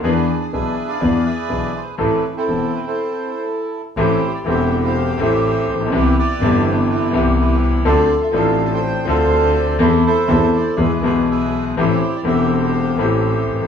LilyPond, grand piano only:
\new Staff \with { instrumentName = "Grand piano" } { \clef bass \time 4/4 \key a \minor \tempo 4 = 123 << { <e, e b d' gis'>8 r8 <b,, b, e b d' gis'>8 r8 <e, e b d' gis'>8 r8 <b,, b, e b d' gis'>8 r8 | <a,, a, e a c' a'>8 r8 <e,, e, e a c' a'>8 r2 r8 | <a,, a, e a c' g'>8 r8 <e,, e, e a c' g'>4. <a,, a, e a c' g'>4. | <c, c e b c' g'>8 r8 <g,, g, e b c' g'>4. <c, c e b c' g'>4. |
<d, d f c' d' a'>8 r8 <a,, a, f c' d' a'>4. <d, d f c' d' a'>4. | <e, e a c' a'>8 r8 <e, e a c' a'>8 r8 <e, e gis b gis'>8 <b,, b, e gis b gis'>4. | <a,, a, e a c' g'>8 r8 <e,, e, e a c' g'>4. <a,, a, e a c' g'>4. | } \\ { r1 | r1 | r2. r8 r32 a,,32 bes,,32 b,,32 | r1 |
r1 | r1 | r2. r8 r32 gis,,32 a,,32 r32 | } >> }